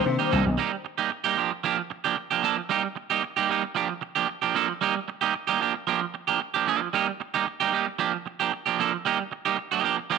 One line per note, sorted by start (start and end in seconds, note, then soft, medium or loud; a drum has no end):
0.00 0.54 D#3 soft
0.00 0.54 A#3 soft
0.00 0.30 C4 medium
0.00 0.55 D4 medium
0.00 0.30 C5 medium
0.05 0.16 C3 loud
0.05 muted clean electric guitar stroke soft
0.19 0.30 G3 soft
0.19 0.30 A#3 medium
0.19 0.31 D#4 medium
0.19 0.31 G4 medium
0.31 0.43 C2 medium
0.31 0.48 G3 medium
0.31 0.46 A#3 medium
0.31 0.45 D#4 loud
0.31 0.45 A4 medium
0.46 0.55 B1 medium
0.46 muted clean electric guitar stroke soft
0.58 0.75 G3 medium
0.58 0.72 A#3 medium
0.58 0.71 D#4 loud
0.58 0.71 G4 medium
0.72 muted clean electric guitar stroke soft
0.85 muted clean electric guitar stroke soft
0.98 1.10 G3 medium
0.98 1.10 A#3 medium
0.98 1.11 D#4 medium
0.98 1.10 G4 medium
1.11 muted clean electric guitar stroke soft
1.24 1.37 G3 medium
1.24 1.37 A#3 medium
1.24 1.38 D#4 medium
1.24 1.38 G4 medium
1.37 1.51 F3 medium
1.37 1.51 A#3 medium
1.37 1.51 D4 medium
1.37 1.50 G4 medium
1.52 muted clean electric guitar stroke soft
1.64 1.81 F3 medium
1.64 1.78 A#3 medium
1.64 1.78 D4 medium
1.64 1.77 G4 medium
1.78 muted clean electric guitar stroke soft
1.90 muted clean electric guitar stroke soft
2.04 2.15 F3 soft
2.04 2.16 A#3 medium
2.04 2.16 D4 medium
2.04 2.16 G4 medium
2.17 muted clean electric guitar stroke soft
2.31 2.42 F3 soft
2.31 2.43 A#3 soft
2.31 2.43 D4 medium
2.31 2.43 G4 medium
2.43 2.60 F3 medium
2.43 2.57 A#3 medium
2.43 2.57 D4 medium
2.43 2.57 A4 medium
2.57 muted clean electric guitar stroke soft
2.69 2.86 G3 medium
2.69 2.84 A#3 medium
2.69 2.83 D#4 medium
2.69 2.82 G4 medium
2.84 muted clean electric guitar stroke soft
2.96 muted clean electric guitar stroke soft
3.10 3.22 G3 soft
3.10 3.22 A#3 medium
3.10 3.23 D#4 medium
3.10 3.22 G4 medium
3.23 muted clean electric guitar stroke soft
3.37 3.48 G3 medium
3.37 3.49 A#3 medium
3.37 3.49 D#4 medium
3.37 3.50 G4 medium
3.49 3.63 G3 medium
3.49 3.63 A#3 medium
3.49 3.63 D#4 medium
3.49 3.63 G4 medium
3.64 muted clean electric guitar stroke soft
3.75 3.92 F3 medium
3.75 3.89 A#3 medium
3.75 3.89 D4 medium
3.75 3.88 G4 medium
3.89 muted clean electric guitar stroke soft
4.01 muted clean electric guitar stroke soft
4.15 4.27 F3 medium
4.15 4.27 A#3 medium
4.15 4.28 D4 medium
4.15 4.28 G4 medium
4.28 muted clean electric guitar stroke soft
4.42 4.53 F3 medium
4.42 4.54 A#3 soft
4.42 4.55 D4 medium
4.42 4.54 G4 medium
4.55 4.72 F3 medium
4.55 4.69 A#3 medium
4.55 4.68 D4 medium
4.55 4.68 A4 medium
4.68 muted clean electric guitar stroke soft
4.81 4.98 G3 medium
4.81 4.96 A#3 medium
4.81 4.95 D#4 medium
4.81 4.94 G4 medium
4.96 muted clean electric guitar stroke soft
5.08 muted clean electric guitar stroke soft
5.21 5.33 G3 medium
5.21 5.33 A#3 medium
5.21 5.34 D#4 medium
5.21 5.34 G4 medium
5.34 muted clean electric guitar stroke soft
5.47 5.60 G3 medium
5.47 5.60 A#3 medium
5.47 5.61 D#4 medium
5.47 5.61 G4 medium
5.60 5.74 F3 medium
5.60 5.75 A#3 medium
5.60 5.74 D4 medium
5.60 5.73 G4 medium
5.74 muted clean electric guitar stroke soft
5.87 6.04 F3 medium
5.87 6.01 A#3 medium
5.87 6.01 D4 medium
5.87 6.00 G4 medium
6.01 muted clean electric guitar stroke soft
6.14 muted clean electric guitar stroke soft
6.28 6.39 F3 soft
6.28 6.40 A#3 medium
6.28 6.40 D4 medium
6.28 6.40 G4 medium
6.40 muted clean electric guitar stroke soft
6.54 6.66 F3 soft
6.54 6.66 A#3 soft
6.54 6.67 D4 soft
6.54 6.66 G4 medium
6.67 6.88 F3 medium
6.67 6.81 A#3 medium
6.67 6.81 D4 medium
6.67 6.81 A4 medium
6.81 muted clean electric guitar stroke soft
6.93 7.10 G3 medium
6.93 7.08 A#3 medium
6.93 7.08 D#4 medium
6.93 7.07 G4 medium
7.08 muted clean electric guitar stroke soft
7.20 muted clean electric guitar stroke soft
7.34 7.45 G3 soft
7.34 7.46 A#3 medium
7.34 7.46 D#4 medium
7.34 7.46 G4 medium
7.47 muted clean electric guitar stroke soft
7.60 7.71 G3 medium
7.60 7.72 A#3 medium
7.60 7.72 D#4 medium
7.60 7.73 G4 medium
7.72 7.86 G3 medium
7.72 7.86 A#3 medium
7.72 7.86 D#4 medium
7.72 7.86 G4 medium
7.87 muted clean electric guitar stroke soft
7.99 8.16 F3 medium
7.99 8.13 A#3 medium
7.99 8.13 D4 medium
7.99 8.12 G4 medium
8.13 muted clean electric guitar stroke soft
8.26 muted clean electric guitar stroke soft
8.40 8.51 F3 soft
8.40 8.52 A#3 medium
8.40 8.52 D4 medium
8.40 8.52 G4 medium
8.52 muted clean electric guitar stroke soft
8.66 8.78 F3 soft
8.66 8.78 A#3 soft
8.66 8.79 D4 medium
8.66 8.78 G4 soft
8.79 8.96 F3 medium
8.79 8.93 A#3 medium
8.79 8.93 D4 medium
8.79 8.92 A4 loud
8.93 muted clean electric guitar stroke soft
9.05 9.22 G3 medium
9.05 9.19 A#3 medium
9.05 9.19 D#4 loud
9.05 9.18 G4 medium
9.19 muted clean electric guitar stroke soft
9.32 muted clean electric guitar stroke soft
9.45 9.56 G3 medium
9.45 9.57 A#3 medium
9.45 9.57 D#4 medium
9.45 9.58 G4 medium
9.58 muted clean electric guitar stroke soft
9.72 9.83 G3 medium
9.72 9.83 A#3 medium
9.72 9.84 D#4 medium
9.72 9.84 G4 medium
9.83 9.97 F3 medium
9.83 9.98 A#3 medium
9.83 9.97 D4 medium
9.83 9.96 G4 medium
9.98 muted clean electric guitar stroke soft
10.10 10.18 F3 medium
10.10 10.18 A#3 medium
10.10 10.18 D4 medium
10.10 10.18 G4 medium